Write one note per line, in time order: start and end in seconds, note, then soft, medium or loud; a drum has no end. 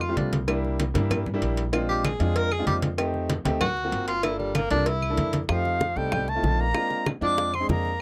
0.00 0.13 F2 medium
0.00 0.19 F4 medium
0.00 high conga soft
0.00 claves medium
0.09 0.36 G3 medium
0.09 0.36 A3 medium
0.09 0.36 C4 medium
0.09 0.37 F4 medium
0.17 0.90 C2 medium
0.17 0.33 D4 medium
0.17 cowbell medium
0.17 high conga medium
0.33 cowbell medium
0.33 high conga medium
0.47 0.81 G3 medium
0.47 0.81 A#3 medium
0.47 0.81 D4 medium
0.47 0.81 E4 medium
0.47 cowbell loud
0.47 high conga soft
0.47 claves medium
0.64 high conga soft
0.80 cowbell medium
0.80 high conga medium
0.94 1.39 G2 loud
0.94 1.22 G3 medium
0.94 1.22 A#3 medium
0.94 1.22 D4 medium
0.94 1.23 E4 medium
0.94 cowbell medium
0.94 high conga loud
1.11 cowbell loud
1.11 high conga soft
1.11 low conga medium
1.11 claves medium
1.26 high conga soft
1.26 low conga medium
1.34 1.61 G3 medium
1.34 1.62 A#3 medium
1.34 1.62 D4 medium
1.34 1.62 E4 loud
1.42 2.15 A#1 medium
1.42 cowbell medium
1.42 high conga soft
1.57 cowbell medium
1.73 2.06 G#3 medium
1.73 2.06 C4 medium
1.73 2.06 D4 medium
1.73 2.06 F4 loud
1.73 cowbell loud
1.73 high conga soft
1.73 claves medium
1.89 2.06 G4 loud
1.89 high conga soft
2.05 2.38 G#4 medium
2.05 cowbell medium
2.05 high conga medium
2.05 claves medium
2.20 2.64 F2 medium
2.20 2.47 G#3 medium
2.20 2.48 C4 medium
2.20 2.48 D4 medium
2.20 2.48 F4 medium
2.20 cowbell medium
2.20 high conga soft
2.36 2.54 A#4 loud
2.36 cowbell loud
2.36 high conga soft
2.51 2.66 G#4 loud
2.51 high conga soft
2.51 claves medium
2.59 2.87 G#3 medium
2.59 2.87 C4 medium
2.59 2.87 D4 medium
2.59 2.87 F4 medium
2.67 3.40 F2 loud
2.67 2.77 G4 medium
2.67 cowbell medium
2.67 high conga medium
2.82 cowbell medium
2.82 high conga medium
2.98 3.31 A3 medium
2.98 3.31 C4 medium
2.98 3.31 D#4 medium
2.98 3.31 G4 medium
2.98 cowbell loud
2.98 high conga soft
2.98 claves medium
3.14 high conga soft
3.30 cowbell medium
3.30 high conga medium
3.45 3.89 D2 medium
3.45 3.61 A3 medium
3.45 3.61 C4 medium
3.45 3.61 D#4 medium
3.45 3.61 G4 loud
3.45 cowbell medium
3.45 high conga loud
3.61 4.05 F#4 loud
3.61 cowbell loud
3.61 high conga soft
3.61 low conga medium
3.61 claves medium
3.77 high conga soft
3.84 4.12 A#3 medium
3.84 4.12 C4 medium
3.84 4.12 F4 medium
3.84 4.12 F#4 medium
3.92 4.65 G1 medium
3.92 cowbell medium
3.92 high conga soft
4.08 4.25 F4 loud
4.08 cowbell medium
4.23 4.57 A#3 medium
4.23 4.57 D4 medium
4.23 4.38 E4 medium
4.23 4.57 F4 medium
4.23 4.57 A4 medium
4.23 cowbell loud
4.23 high conga soft
4.23 claves medium
4.39 4.56 G3 medium
4.39 high conga soft
4.55 4.70 A#3 medium
4.55 cowbell medium
4.55 high conga medium
4.55 claves medium
4.70 5.14 C2 medium
4.70 4.86 A#3 medium
4.70 4.87 D4 medium
4.70 4.88 D4 loud
4.70 4.87 F4 medium
4.70 4.87 A4 medium
4.70 cowbell medium
4.70 high conga soft
4.86 5.42 E4 loud
4.86 cowbell loud
4.86 high conga soft
5.02 high conga soft
5.02 claves medium
5.10 5.37 A#3 medium
5.10 5.38 D4 medium
5.10 5.38 E4 medium
5.10 5.38 A4 medium
5.17 5.45 F2 medium
5.17 cowbell medium
5.17 high conga medium
5.33 cowbell medium
5.33 high conga medium
5.49 5.93 F2 medium
5.49 5.98 F3 medium
5.49 5.82 A3 medium
5.49 5.82 C4 medium
5.49 5.82 D#4 medium
5.49 5.83 G4 medium
5.49 5.99 F5 medium
5.49 high bongo medium
5.49 high conga soft
5.49 claves medium
5.65 high bongo soft
5.65 high conga soft
5.81 high bongo medium
5.81 high conga medium
5.96 6.40 C2 medium
5.96 6.30 G3 medium
5.96 6.24 A3 medium
5.96 6.24 C4 medium
5.96 6.24 D#4 medium
5.96 6.24 A4 medium
5.96 6.30 G5 medium
5.96 high bongo soft
5.96 high conga soft
6.12 high bongo medium
6.12 high conga soft
6.12 low conga medium
6.12 claves medium
6.28 6.61 A3 medium
6.28 6.62 A5 medium
6.28 high bongo soft
6.28 high conga soft
6.35 6.63 A3 medium
6.35 6.63 C4 medium
6.35 6.63 D#4 medium
6.35 6.63 F4 medium
6.43 6.71 A#1 medium
6.43 high bongo soft
6.43 low bongo medium
6.43 high conga medium
6.60 7.07 A#3 medium
6.60 7.07 A#5 loud
6.74 7.07 G#3 medium
6.74 7.08 C4 medium
6.74 7.08 D4 medium
6.74 7.08 F4 medium
6.74 high bongo medium
6.74 high conga soft
6.74 claves medium
6.90 high bongo soft
6.90 high conga soft
7.06 high bongo medium
7.06 high conga medium
7.06 claves medium
7.21 7.66 F2 medium
7.21 7.49 G#3 medium
7.21 7.49 C4 medium
7.21 7.49 D4 medium
7.21 7.55 D4 medium
7.21 7.50 F4 medium
7.21 7.57 D6 loud
7.21 high bongo soft
7.21 high conga soft
7.38 high bongo medium
7.38 high conga soft
7.54 7.69 C4 medium
7.54 7.70 C6 medium
7.54 high bongo soft
7.54 high conga soft
7.54 claves medium
7.60 7.88 G#3 medium
7.60 7.88 C4 medium
7.60 7.89 D4 medium
7.60 7.89 G#4 medium
7.69 7.97 F2 medium
7.69 8.02 A#3 medium
7.69 8.02 A#5 loud
7.69 high bongo soft
7.69 low bongo medium
7.69 high conga medium
7.85 high conga soft